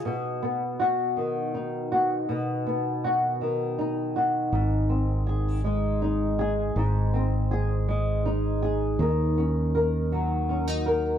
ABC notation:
X:1
M:6/8
L:1/16
Q:3/8=54
K:Abmix
V:1 name="Nylon-string guitar"
_C,2 _C2 G2 E,2 E2 G2 | _C,2 _C2 G2 E,2 E2 G2 | A,,2 C2 A2 A,2 E2 A2 | A,,2 C2 A2 A,2 E2 A2 |
E,2 D2 B2 G,2 D E B2 |]
V:2 name="Fretless electric bass" clef=bass
z12 | z12 | A,,,12 | A,,,12 |
E,,12 |]